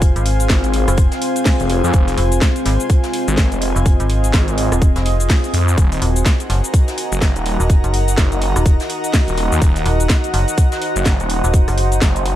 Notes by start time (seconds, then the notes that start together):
Already playing: F1 C4 F4 G#4 C5 F5 G#5
0.02 kick, closed hi-hat, cabasa
0.16 G#1, closed hi-hat, cabasa
0.26 closed hi-hat, open hi-hat
0.40 closed hi-hat, cabasa
0.49 G#1, kick, snare, closed hi-hat, cabasa
0.64 closed hi-hat, cabasa
0.74 closed hi-hat, open hi-hat
0.88 F1, cross-stick, closed hi-hat, cabasa
0.97 kick, closed hi-hat, cabasa
1.11 snare, closed hi-hat, cabasa
1.22 closed hi-hat, open hi-hat
1.36 closed hi-hat, cabasa
1.46 kick, snare, closed hi-hat, open hi-hat, cabasa
1.60 F1, closed hi-hat, cabasa
1.70 closed hi-hat, open hi-hat
1.84 F2, cabasa
1.93 F1 D#5, kick, closed hi-hat, cabasa
2.08 open hi-hat, cabasa
2.17 F1, closed hi-hat, open hi-hat
2.32 closed hi-hat, cabasa
2.42 kick, snare, closed hi-hat, cabasa
2.56 closed hi-hat, cabasa
2.65 G#1, snare, closed hi-hat, open hi-hat
2.80 closed hi-hat, cabasa
2.90 kick, closed hi-hat, cabasa
3.03 snare, closed hi-hat, cabasa
3.14 closed hi-hat, open hi-hat
3.28 G#1, closed hi-hat, cabasa
3.37 kick, snare, closed hi-hat, cabasa
3.52 F1, closed hi-hat, cabasa
3.62 closed hi-hat, open hi-hat
3.75 F1, closed hi-hat, cabasa
3.86 kick, closed hi-hat, cabasa
4.00 G#1, closed hi-hat, cabasa
4.10 closed hi-hat, open hi-hat
4.24 closed hi-hat, cabasa
4.34 G#1, kick, snare, closed hi-hat, cabasa
4.48 closed hi-hat, cabasa
4.58 closed hi-hat, open hi-hat
4.72 D#1, cross-stick, closed hi-hat, cabasa
4.82 kick, closed hi-hat, cabasa
4.96 F1, snare, closed hi-hat, cabasa
5.06 closed hi-hat, open hi-hat
5.20 closed hi-hat, cabasa
5.30 kick, snare, closed hi-hat, open hi-hat, cabasa
5.44 closed hi-hat, cabasa
5.54 F2, closed hi-hat, open hi-hat
5.68 cabasa
5.78 D#1 D#4 F#4 A#4 F#5, kick, closed hi-hat, cabasa
5.92 open hi-hat, cabasa
6.02 D#1, closed hi-hat, open hi-hat
6.16 closed hi-hat, cabasa
6.26 A#5, kick, snare, closed hi-hat, cabasa
6.40 D#5, closed hi-hat, cabasa
6.50 F#1, snare, closed hi-hat, open hi-hat
6.64 closed hi-hat, cabasa
6.74 kick, closed hi-hat, cabasa
6.88 snare, closed hi-hat, cabasa
6.98 closed hi-hat, open hi-hat
7.12 F#1, closed hi-hat, cabasa
7.22 kick, snare, closed hi-hat, cabasa
7.36 D#1, closed hi-hat, cabasa
7.46 closed hi-hat, open hi-hat
7.60 D#1, closed hi-hat, cabasa
7.69 kick, closed hi-hat, cabasa
7.84 F#1, closed hi-hat, cabasa
7.94 closed hi-hat, open hi-hat
8.08 closed hi-hat, cabasa
8.17 F#1, kick, snare, closed hi-hat, cabasa
8.32 closed hi-hat, cabasa
8.42 closed hi-hat, open hi-hat
8.56 D#1, cross-stick, closed hi-hat, cabasa
8.66 kick, closed hi-hat, cabasa
8.80 snare, closed hi-hat, cabasa
8.90 closed hi-hat, open hi-hat
9.03 closed hi-hat, cabasa
9.13 kick, snare, closed hi-hat, open hi-hat, cabasa
9.28 D#1, closed hi-hat, cabasa
9.37 closed hi-hat, open hi-hat
9.52 D#2, cabasa
9.62 D#1 C5, kick, closed hi-hat, cabasa
9.76 open hi-hat, cabasa
9.86 D#1, closed hi-hat, open hi-hat
10.00 closed hi-hat, cabasa
10.09 kick, snare, closed hi-hat, cabasa
10.24 closed hi-hat, cabasa
10.33 F#1, snare, closed hi-hat, open hi-hat
10.48 closed hi-hat, cabasa
10.58 kick, closed hi-hat, cabasa
10.72 snare, closed hi-hat, cabasa
10.82 closed hi-hat, open hi-hat
10.96 F#1, closed hi-hat, cabasa
11.05 kick, snare, closed hi-hat, cabasa
11.20 D#1, closed hi-hat, cabasa
11.30 closed hi-hat, open hi-hat
11.44 D#1, closed hi-hat, cabasa
11.54 kick, closed hi-hat, cabasa
11.68 F#1, cross-stick, open hi-hat, cabasa
11.78 closed hi-hat, open hi-hat
11.92 closed hi-hat, cabasa
12.02 F#1, kick, snare, closed hi-hat, cabasa
12.16 closed hi-hat, cabasa
12.26 closed hi-hat, open hi-hat